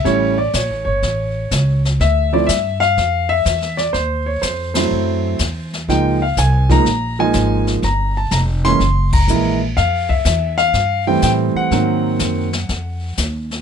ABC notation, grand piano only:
X:1
M:4/4
L:1/8
Q:"Swing" 1/4=123
K:Aphr
V:1 name="Grand piano"
^c d c c4 z | e d e f2 e2 d | c _d c c4 z | g f _a b2 a2 z |
b a b c'2 b2 z | f e e f2 g g _g- | _g6 z2 |]
V:2 name="Grand piano"
[G,A,^CE] z6 z | z [F,A,CE] z6 | z3 [_G,A,CE]3 z2 | [F,_A,B,_E] z2 [F,A,B,E] z [F,A,B,E]3 |
z3 [E,_A,B,_D] z2 [_F,A,B,_F] z | z4 z [E,G,A,C]3 | [_E,_G,B,C]3 z4 z |]